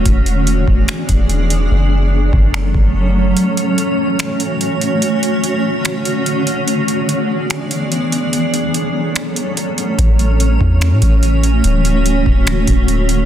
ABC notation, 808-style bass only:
X:1
M:4/4
L:1/16
Q:1/4=145
K:A
V:1 name="808-style bass" clef=bass
E,,,6 E,,,2 z2 E,,,6 | F,,,6 F,,,4 F,,,6 | z16 | z16 |
z16 | z16 | A,,,6 E,,3 A,, A,,,6 | D,,,6 D,,,4 D,,,6 |]